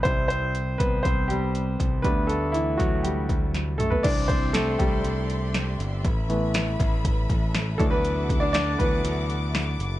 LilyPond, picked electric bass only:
\new Staff \with { instrumentName = "Picked electric bass" } { \clef bass \time 4/4 \key c \lydian \tempo 4 = 120 c,4. c,8 c,4. c,8 | d,4. d,4 d,4 b,,8 | c,4. c,8 c,4. g,,8 | a,,4. a,,4 a,,4 d,8~ |
d,4. d,8 d,4. fis,,8 | }